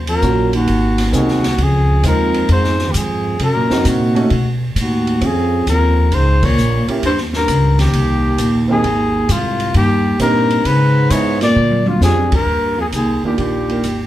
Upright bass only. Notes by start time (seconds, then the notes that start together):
Already playing: D#2
0.22 A#1
0.67 G#1
1.13 C2
1.58 C#2
2.03 D#2
2.49 F2
2.94 G#2
3.39 C3
3.54 A#2
3.70 F#2
3.85 A#2
4.31 B2
4.75 A2
5.21 F2
5.66 D#2
6.12 C#2
6.57 A#1
6.87 muted upright bass stroke
7.02 D#2
7.48 C#2
7.93 C2
8.38 A#1
8.83 G#1
9.29 G#2
9.74 G2
10.19 A#2
10.65 C#3
11.10 G#2
11.56 A#2
12.01 F2
12.46 D#2
12.92 C2
13.23 muted upright bass stroke
13.38 A#1
13.83 G#1